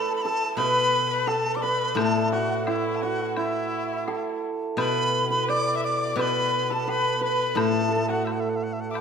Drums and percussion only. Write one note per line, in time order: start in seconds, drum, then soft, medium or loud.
0.58 high woodblock soft
1.28 low woodblock soft
1.97 high woodblock medium
2.67 high woodblock soft
2.67 low woodblock soft
3.37 high woodblock medium
4.08 low woodblock soft
4.78 high woodblock medium
5.49 high woodblock soft
6.19 high woodblock medium
6.89 low woodblock soft
7.57 high woodblock medium
8.27 high woodblock soft
8.95 high woodblock soft